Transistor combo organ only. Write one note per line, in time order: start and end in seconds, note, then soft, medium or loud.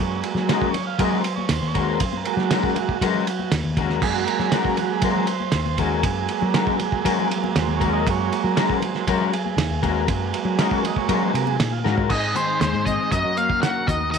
0.00 0.70 F#3 medium
0.00 0.71 G#3 medium
0.00 0.71 A#3 medium
0.00 0.21 C#5 loud
0.54 0.67 D#5 loud
0.70 0.85 C#5 loud
0.87 1.02 F5 loud
0.98 1.21 F#3 medium
0.98 1.22 G#3 soft
0.98 1.22 A#3 medium
0.98 1.18 D#5 loud
1.19 1.35 C5 loud
1.36 1.46 C#5 medium
1.47 1.51 C#5 medium
1.53 1.68 C5 loud
1.67 1.84 C#5 medium
1.83 2.18 C5 medium
2.17 2.34 A#4 medium
2.26 2.98 F#3 medium
2.26 2.98 G#3 soft
2.26 2.98 A#3 medium
2.34 3.56 F#4 medium
4.02 5.02 F#3 medium
4.02 5.02 G#3 medium
4.02 5.03 A#3 medium
4.02 4.15 G#4 loud
4.15 4.28 F#4 medium
4.27 4.40 A#4 loud
4.40 4.53 G#4 medium
4.54 4.66 F#4 medium
4.67 4.78 A#4 medium
4.79 4.91 F#4 medium
4.92 5.03 G#4 medium
5.03 5.26 F#3 medium
5.03 5.26 G#3 soft
5.03 5.26 A#3 medium
5.03 5.41 C5 loud
5.42 5.80 C5 loud
5.80 6.44 G#4 loud
6.06 8.03 F#3 medium
6.06 8.03 G#3 medium
6.06 8.03 A#3 medium
6.45 6.79 A#4 medium
6.84 7.29 G#4 medium
7.61 7.74 C5 loud
7.77 7.90 C#5 loud
7.93 8.08 D#5 loud
8.08 8.83 F#3 medium
8.08 8.82 G#3 medium
8.08 8.84 A#3 medium
8.08 8.43 C#5 loud
8.43 8.76 A#4 medium
8.77 9.10 C5 loud
8.83 9.06 F#3 soft
8.83 9.05 G#3 soft
8.83 9.06 A#3 medium
9.09 9.34 A#4 medium
9.33 10.04 G#4 medium
10.10 11.32 F#3 medium
10.10 11.32 G#3 medium
10.10 11.33 A#3 medium
10.61 10.73 D#5 loud
10.73 10.85 C#5 loud
10.86 10.98 D#5 loud
10.97 11.23 C#5 medium
11.25 11.36 C5 loud
11.33 11.57 F#3 medium
11.33 11.57 G#3 soft
11.33 11.57 A#3 medium
11.33 11.48 A#4 medium
11.49 11.74 G#4 medium
11.72 12.08 F4 medium
12.11 13.11 G#3 medium
12.11 13.11 C4 medium
12.11 13.11 D#4 medium
12.11 13.11 G#4 medium
13.12 14.18 A#3 medium
13.12 13.87 C#4 medium
13.12 14.18 F#4 medium
13.12 14.18 A#4 medium
13.88 14.18 D#4 medium